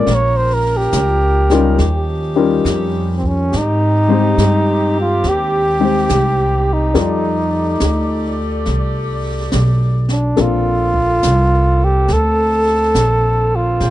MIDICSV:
0, 0, Header, 1, 6, 480
1, 0, Start_track
1, 0, Tempo, 858369
1, 39, Time_signature, 4, 2, 24, 8
1, 7773, End_track
2, 0, Start_track
2, 0, Title_t, "Flugelhorn"
2, 0, Program_c, 0, 56
2, 0, Note_on_c, 0, 74, 76
2, 82, Note_on_c, 0, 73, 83
2, 90, Note_off_c, 0, 74, 0
2, 204, Note_on_c, 0, 72, 76
2, 212, Note_off_c, 0, 73, 0
2, 303, Note_on_c, 0, 70, 77
2, 311, Note_off_c, 0, 72, 0
2, 429, Note_on_c, 0, 67, 77
2, 438, Note_off_c, 0, 70, 0
2, 1156, Note_off_c, 0, 67, 0
2, 1775, Note_on_c, 0, 60, 53
2, 1831, Note_on_c, 0, 61, 75
2, 1839, Note_off_c, 0, 60, 0
2, 1997, Note_on_c, 0, 63, 88
2, 2006, Note_off_c, 0, 61, 0
2, 2782, Note_off_c, 0, 63, 0
2, 2799, Note_on_c, 0, 65, 75
2, 2955, Note_on_c, 0, 67, 93
2, 2963, Note_off_c, 0, 65, 0
2, 3765, Note_on_c, 0, 63, 72
2, 3773, Note_off_c, 0, 67, 0
2, 4703, Note_off_c, 0, 63, 0
2, 5655, Note_on_c, 0, 62, 71
2, 5821, Note_on_c, 0, 65, 90
2, 5830, Note_off_c, 0, 62, 0
2, 6623, Note_on_c, 0, 67, 80
2, 6631, Note_off_c, 0, 65, 0
2, 6783, Note_on_c, 0, 69, 94
2, 6791, Note_off_c, 0, 67, 0
2, 7580, Note_on_c, 0, 65, 76
2, 7589, Note_off_c, 0, 69, 0
2, 7773, Note_off_c, 0, 65, 0
2, 7773, End_track
3, 0, Start_track
3, 0, Title_t, "Grand piano"
3, 0, Program_c, 1, 0
3, 0, Control_c, 1, 64, 127
3, 47, Control_c, 1, 64, 0
3, 132, Control_c, 1, 64, 127
3, 840, Note_on_c, 1, 55, 76
3, 840, Note_on_c, 1, 61, 68
3, 844, Note_on_c, 1, 63, 70
3, 845, Note_on_c, 1, 65, 65
3, 846, Note_on_c, 1, 70, 79
3, 984, Note_off_c, 1, 55, 0
3, 984, Note_off_c, 1, 61, 0
3, 986, Note_off_c, 1, 63, 0
3, 987, Note_off_c, 1, 65, 0
3, 987, Note_off_c, 1, 70, 0
3, 1007, Control_c, 1, 64, 0
3, 1116, Control_c, 1, 64, 127
3, 1318, Note_on_c, 1, 55, 66
3, 1320, Note_on_c, 1, 61, 62
3, 1321, Note_on_c, 1, 63, 57
3, 1321, Note_on_c, 1, 65, 59
3, 1323, Note_on_c, 1, 70, 69
3, 1467, Note_off_c, 1, 55, 0
3, 1468, Note_off_c, 1, 61, 0
3, 1469, Note_off_c, 1, 63, 0
3, 1469, Note_off_c, 1, 65, 0
3, 1470, Note_off_c, 1, 70, 0
3, 1980, Control_c, 1, 64, 0
3, 2063, Control_c, 1, 64, 127
3, 2283, Note_on_c, 1, 56, 61
3, 2286, Note_on_c, 1, 60, 53
3, 2289, Note_on_c, 1, 63, 54
3, 2291, Note_on_c, 1, 67, 53
3, 2291, Note_on_c, 1, 72, 65
3, 2431, Note_off_c, 1, 56, 0
3, 2433, Note_off_c, 1, 60, 0
3, 2434, Note_off_c, 1, 63, 0
3, 2435, Note_off_c, 1, 67, 0
3, 2435, Note_off_c, 1, 72, 0
3, 3242, Note_on_c, 1, 56, 52
3, 3243, Note_on_c, 1, 60, 47
3, 3244, Note_on_c, 1, 63, 48
3, 3246, Note_on_c, 1, 67, 47
3, 3248, Note_on_c, 1, 72, 59
3, 3390, Note_off_c, 1, 56, 0
3, 3391, Note_off_c, 1, 60, 0
3, 3391, Note_off_c, 1, 63, 0
3, 3392, Note_off_c, 1, 67, 0
3, 3393, Note_off_c, 1, 72, 0
3, 3879, Note_on_c, 1, 55, 55
3, 3881, Note_on_c, 1, 74, 51
3, 3883, Note_on_c, 1, 63, 50
3, 3883, Note_on_c, 1, 65, 50
3, 3885, Note_on_c, 1, 69, 57
3, 3896, Control_c, 1, 64, 0
3, 3996, Control_c, 1, 64, 127
3, 4170, Note_off_c, 1, 55, 0
3, 4171, Note_off_c, 1, 74, 0
3, 4172, Note_off_c, 1, 63, 0
3, 4172, Note_off_c, 1, 65, 0
3, 4173, Note_off_c, 1, 69, 0
3, 5794, Note_on_c, 1, 53, 52
3, 5795, Note_on_c, 1, 58, 48
3, 5795, Note_on_c, 1, 60, 51
3, 5798, Note_on_c, 1, 62, 50
3, 5798, Note_on_c, 1, 69, 55
3, 5809, Control_c, 1, 64, 0
3, 5892, Control_c, 1, 64, 127
3, 6083, Note_off_c, 1, 53, 0
3, 6084, Note_off_c, 1, 58, 0
3, 6084, Note_off_c, 1, 60, 0
3, 6085, Note_off_c, 1, 62, 0
3, 6085, Note_off_c, 1, 69, 0
3, 7723, Control_c, 1, 64, 0
3, 7773, End_track
4, 0, Start_track
4, 0, Title_t, "Saxophone section"
4, 0, Program_c, 2, 65
4, 0, Note_on_c, 2, 53, 64
4, 0, Note_on_c, 2, 58, 58
4, 45, Note_on_c, 2, 61, 56
4, 46, Note_on_c, 2, 70, 70
4, 977, Note_off_c, 2, 58, 0
4, 989, Note_off_c, 2, 61, 0
4, 993, Note_off_c, 2, 70, 0
4, 993, Note_on_c, 2, 63, 61
4, 996, Note_on_c, 2, 61, 60
4, 998, Note_on_c, 2, 67, 73
4, 1870, Note_off_c, 2, 53, 0
4, 1870, Note_off_c, 2, 61, 0
4, 1870, Note_off_c, 2, 63, 0
4, 1870, Note_off_c, 2, 67, 0
4, 1965, Note_on_c, 2, 67, 66
4, 1967, Note_on_c, 2, 60, 53
4, 1972, Note_on_c, 2, 51, 53
4, 3866, Note_off_c, 2, 67, 0
4, 3867, Note_off_c, 2, 60, 0
4, 3869, Note_off_c, 2, 51, 0
4, 3883, Note_on_c, 2, 67, 66
4, 3886, Note_on_c, 2, 74, 57
4, 3887, Note_on_c, 2, 57, 55
4, 5697, Note_off_c, 2, 57, 0
4, 5697, Note_off_c, 2, 67, 0
4, 5697, Note_off_c, 2, 74, 0
4, 5792, Note_on_c, 2, 60, 57
4, 5794, Note_on_c, 2, 50, 61
4, 5794, Note_on_c, 2, 58, 53
4, 5794, Note_on_c, 2, 69, 64
4, 7694, Note_off_c, 2, 58, 0
4, 7694, Note_off_c, 2, 69, 0
4, 7709, Note_on_c, 2, 58, 53
4, 7711, Note_on_c, 2, 79, 65
4, 7773, Note_off_c, 2, 50, 0
4, 7773, Note_off_c, 2, 58, 0
4, 7773, Note_off_c, 2, 60, 0
4, 7773, Note_off_c, 2, 79, 0
4, 7773, End_track
5, 0, Start_track
5, 0, Title_t, "Upright bass"
5, 0, Program_c, 3, 32
5, 37, Note_on_c, 3, 34, 78
5, 503, Note_off_c, 3, 34, 0
5, 518, Note_on_c, 3, 37, 85
5, 985, Note_off_c, 3, 37, 0
5, 1000, Note_on_c, 3, 39, 85
5, 1471, Note_off_c, 3, 39, 0
5, 1481, Note_on_c, 3, 41, 80
5, 1955, Note_off_c, 3, 41, 0
5, 1978, Note_on_c, 3, 44, 73
5, 2440, Note_off_c, 3, 44, 0
5, 2447, Note_on_c, 3, 43, 70
5, 2913, Note_off_c, 3, 43, 0
5, 2929, Note_on_c, 3, 39, 72
5, 3395, Note_off_c, 3, 39, 0
5, 3408, Note_on_c, 3, 36, 78
5, 3873, Note_off_c, 3, 36, 0
5, 3884, Note_on_c, 3, 41, 72
5, 4350, Note_off_c, 3, 41, 0
5, 4368, Note_on_c, 3, 38, 75
5, 4831, Note_off_c, 3, 38, 0
5, 4847, Note_on_c, 3, 36, 71
5, 5311, Note_off_c, 3, 36, 0
5, 5331, Note_on_c, 3, 35, 81
5, 5791, Note_off_c, 3, 35, 0
5, 5806, Note_on_c, 3, 34, 70
5, 6267, Note_off_c, 3, 34, 0
5, 6288, Note_on_c, 3, 36, 78
5, 6748, Note_off_c, 3, 36, 0
5, 6761, Note_on_c, 3, 38, 77
5, 7224, Note_off_c, 3, 38, 0
5, 7239, Note_on_c, 3, 34, 77
5, 7704, Note_off_c, 3, 34, 0
5, 7719, Note_on_c, 3, 46, 73
5, 7773, Note_off_c, 3, 46, 0
5, 7773, End_track
6, 0, Start_track
6, 0, Title_t, "Drums"
6, 37, Note_on_c, 9, 25, 46
6, 37, Note_on_c, 9, 38, 37
6, 93, Note_off_c, 9, 38, 0
6, 518, Note_on_c, 9, 38, 58
6, 518, Note_on_c, 9, 44, 57
6, 574, Note_off_c, 9, 38, 0
6, 574, Note_off_c, 9, 44, 0
6, 838, Note_on_c, 9, 38, 35
6, 894, Note_off_c, 9, 38, 0
6, 998, Note_off_c, 9, 25, 0
6, 998, Note_on_c, 9, 25, 48
6, 998, Note_on_c, 9, 38, 40
6, 1054, Note_off_c, 9, 38, 0
6, 1486, Note_on_c, 9, 38, 57
6, 1486, Note_on_c, 9, 44, 50
6, 1542, Note_off_c, 9, 38, 0
6, 1542, Note_off_c, 9, 44, 0
6, 1809, Note_on_c, 9, 36, 48
6, 1865, Note_off_c, 9, 36, 0
6, 1971, Note_off_c, 9, 25, 0
6, 1971, Note_on_c, 9, 25, 38
6, 1971, Note_on_c, 9, 38, 35
6, 2027, Note_off_c, 9, 38, 0
6, 2451, Note_on_c, 9, 38, 52
6, 2451, Note_on_c, 9, 44, 45
6, 2507, Note_off_c, 9, 38, 0
6, 2507, Note_off_c, 9, 44, 0
6, 2929, Note_off_c, 9, 25, 0
6, 2929, Note_on_c, 9, 25, 40
6, 2929, Note_on_c, 9, 38, 35
6, 2985, Note_off_c, 9, 38, 0
6, 3407, Note_on_c, 9, 38, 50
6, 3407, Note_on_c, 9, 44, 50
6, 3463, Note_off_c, 9, 38, 0
6, 3463, Note_off_c, 9, 44, 0
6, 3884, Note_off_c, 9, 25, 0
6, 3884, Note_on_c, 9, 25, 43
6, 3884, Note_on_c, 9, 38, 38
6, 3940, Note_off_c, 9, 38, 0
6, 4363, Note_on_c, 9, 38, 52
6, 4363, Note_on_c, 9, 44, 48
6, 4418, Note_off_c, 9, 38, 0
6, 4418, Note_off_c, 9, 44, 0
6, 4840, Note_off_c, 9, 25, 0
6, 4840, Note_on_c, 9, 25, 40
6, 4840, Note_on_c, 9, 38, 36
6, 4896, Note_off_c, 9, 38, 0
6, 5322, Note_on_c, 9, 38, 50
6, 5322, Note_on_c, 9, 44, 45
6, 5378, Note_off_c, 9, 38, 0
6, 5378, Note_off_c, 9, 44, 0
6, 5640, Note_on_c, 9, 38, 32
6, 5696, Note_off_c, 9, 38, 0
6, 5797, Note_off_c, 9, 25, 0
6, 5797, Note_on_c, 9, 25, 44
6, 5797, Note_on_c, 9, 38, 37
6, 5852, Note_off_c, 9, 38, 0
6, 6117, Note_on_c, 9, 36, 47
6, 6173, Note_off_c, 9, 36, 0
6, 6278, Note_on_c, 9, 38, 53
6, 6278, Note_on_c, 9, 44, 57
6, 6334, Note_off_c, 9, 38, 0
6, 6334, Note_off_c, 9, 44, 0
6, 6757, Note_off_c, 9, 25, 0
6, 6757, Note_on_c, 9, 25, 46
6, 6757, Note_on_c, 9, 38, 37
6, 6813, Note_off_c, 9, 38, 0
6, 7240, Note_on_c, 9, 38, 53
6, 7240, Note_on_c, 9, 44, 45
6, 7296, Note_off_c, 9, 38, 0
6, 7296, Note_off_c, 9, 44, 0
6, 7719, Note_off_c, 9, 25, 0
6, 7719, Note_on_c, 9, 25, 38
6, 7719, Note_on_c, 9, 38, 37
6, 7773, Note_off_c, 9, 25, 0
6, 7773, Note_off_c, 9, 38, 0
6, 7773, End_track
0, 0, End_of_file